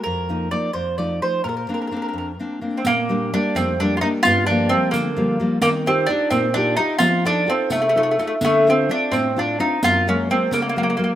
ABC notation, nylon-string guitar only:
X:1
M:6/8
L:1/8
Q:3/8=86
K:Bb
V:1 name="Nylon-string guitar"
F,, [F,B,E] [F,B,E] F,, [F,A,E] [F,A,E] | B,, [B,CD] [B,CD] F,, [B,CD] [B,CD] | B,, [G,B,D] [G,B,D] F,, [G,B,D] [G,B,D] | G,, [F,G,B,] [F,G,B,] D, [F,G,B,] [F,G,B,] |
E, [EFG] [EFG] B,, [EFG] [EFG] | F, [EFA] [EFA] C, [EFA] [EFA] | D, [CDF] [CDF] A,, [CDF] [CDF] | _G,, [_G,_A,B,] [G,A,B,] _D, [G,A,B,] [G,A,B,] |]